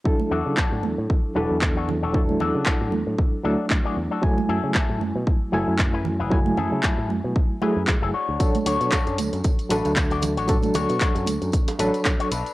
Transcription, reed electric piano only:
X:1
M:4/4
L:1/8
Q:"Swing 16ths" 1/4=115
K:Emix
V:1 name="Reed electric piano"
[F,DEA]4- [F,DEA] [F,DEA]3 | [F,DEA]4- [F,DEA] [F,A,DE]3 | [F,A,Eg]4- [F,A,Eg] [F,A,Eg]3 | [F,A,Eg]4- [F,A,Eg] [F,A,EG]2 z |
[F,DAc]4- [F,DAc] [F,DA]3 | [F,DA]4- [F,DA] [F,DAc]2 z |]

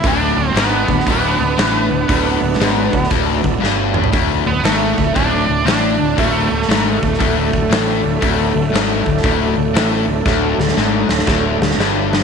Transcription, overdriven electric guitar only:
X:1
M:4/4
L:1/8
Q:"Swing" 1/4=118
K:D
V:1 name="Overdriven electric guitar" clef=bass
D,, D,, ^G,, D,, D,, D,, A,, D,, | D,, D,, ^G,, D,, D,, D,, =G,,2 | D,, D,, ^G,, D,, D,, D,, A,, D,, | D,, D,, ^G,, D,, D,, D,, A,, D,, |
D,, D,, ^G,, D,, D,, D,, A,, D,, | D,, D,, ^G,, D,, D,, D,, =G,,2 |]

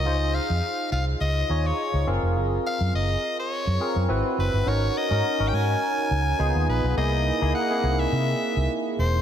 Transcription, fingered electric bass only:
X:1
M:4/4
L:1/16
Q:"Swing 16ths" 1/4=104
K:Db
V:1 name="Fingered electric bass" clef=bass
D,,3 F,, z2 C,,2 D,,2 E,,2 z D,, G,,, F,,, | G,,,2 z G,, G,,,2 z3 G,, z G,, A,,, z G,,, =G,,, | A,,,2 z A,, z A,,, A,,2 z2 D,,2 D,, E,, B,,, _C,, | C,,3 D,, z2 C,,2 C,2 z C,, z2 =E,,,2 |]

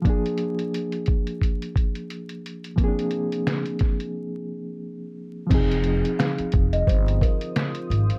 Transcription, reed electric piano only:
X:1
M:4/4
L:1/8
Q:"Swing 16ths" 1/4=88
K:Fdor
V:1 name="Reed electric piano"
[F,B,DA]8 | [F,B,CDA]8 | [F,CEA]8 |]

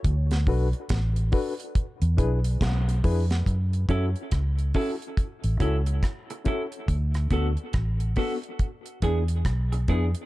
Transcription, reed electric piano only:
X:1
M:4/4
L:1/8
Q:"Swing 16ths" 1/4=70
K:F#m
V:1 name="Reed electric piano"
z [DFAB] z [DFAB] z [DEGB] z [DEGB] | z [CEFA] z [CEFA] z [CEFA] z [CEFA] | z [B,DFA] z [B,DFA] z [B,DEG] z [B,DEG] |]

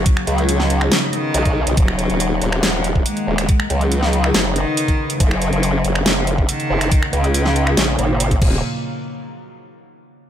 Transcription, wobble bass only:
X:1
M:4/4
L:1/16
Q:1/4=140
K:Cblyd
V:1 name="Wobble bass" clef=bass
z2 ^C,,6 z4 =B,,, z2 B,,, | E,,,3 E,,,3 E,,,6 z2 E,,,2 | z2 ^C,,6 ^F,,,3 z4 z | G,,,3 G,,,3 G,,,6 z2 G,,,2 |
z2 ^C,,6 B,,,2 A,,,4 E,,,2 | z16 |]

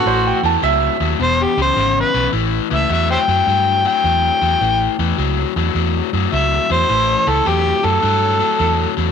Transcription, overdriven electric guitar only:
X:1
M:4/4
L:1/8
Q:"Swing" 1/4=105
K:Amix
V:1 name="Overdriven electric guitar" clef=bass
[A,,E,] [A,,E,] [A,,F,] [A,,F,] [E,,B,,] [E,,C,] [E,,C,] [E,,C,] | [A,,E,] [A,,E,] [A,,F,] [A,,F,] [A,,F,] [A,,F,] [A,,F,] [A,,F,] | [A,,E,] [A,,E,] [A,,F,] [A,,F,] [A,,F,] [A,,F,] [A,,F,] [A,,F,] | [A,,E,] [A,,E,] [A,,F,] [A,,F,] [A,,F,] [A,,F,] [A,,F,] [A,,F,] |]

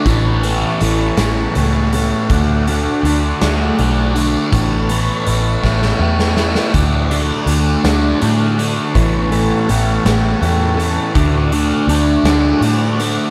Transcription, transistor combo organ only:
X:1
M:6/8
L:1/8
Q:3/8=54
K:D
V:1 name="Transistor combo organ"
[B,Ac]6 | [A,Fd]6 | [B,Ac]6 | [A,Fd]6 |
[B,Ac]6 | [A,Fd]6 |]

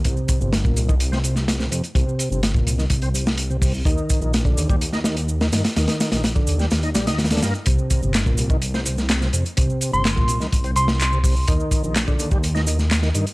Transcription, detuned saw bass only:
X:1
M:4/4
L:1/16
Q:1/4=126
K:Cm
V:1 name="Detuned saw bass" clef=bass
C,, z2 G,,,3 C,,8 F,, z | C,, z2 G,,,3 C,,2 C,,8 | E,, z2 B,,,3 E,,8 G,, z | E,, z2 B,,,3 E,,2 E,,2 B,,, E,,3 G,, z |
C,, z2 G,,,3 C,,8 F,, z | C,, z2 G,,,3 C,,2 C,,8 | E,, z2 B,,,3 E,,8 G,, z |]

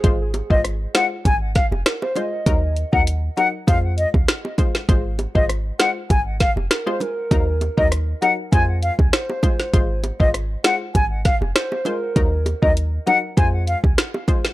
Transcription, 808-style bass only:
X:1
M:4/4
L:1/16
Q:1/4=99
K:Abmix
V:1 name="808-style bass" clef=bass
A,,,3 A,,,3 z2 A,,,3 F,,, z4 | E,,3 E,,3 z2 F,,3 D,, z4 | A,,,3 A,,,3 z2 A,,,3 F,,, z4 | E,,3 E,,3 z2 F,,3 D,, z4 |
A,,,3 A,,,3 z2 A,,,3 F,,, z4 | E,,3 E,,3 z2 F,,3 D,, z4 |]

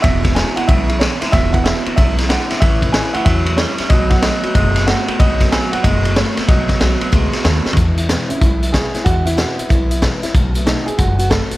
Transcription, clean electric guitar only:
X:1
M:4/4
L:1/8
Q:"Swing" 1/4=186
K:E
V:1 name="Clean electric guitar" clef=bass
[E,,B,,]2 [E,,B,,] [E,,B,,] [E,,C,]2 [E,,=D,] [E,,D,] | [E,,B,,]2 [E,,B,,] [E,,B,,] [E,,C,]2 [E,,=D,] [E,,D,] | [A,,E,]2 [A,,E,] [A,,E,] [A,,F,]2 [A,,=G,] [A,,G,] | [B,,F,]2 [B,,F,] [B,,F,] [B,,G,]2 [B,,A,] [B,,A,] |
[B,,F,]2 [B,,F,] [B,,F,] [B,,G,]2 [B,,A,] [B,,A,] | [B,,F,]2 [B,,F,] [B,,F,] [B,,G,]2 [B,,A,] [B,,A,] | z8 | z8 |
z8 |]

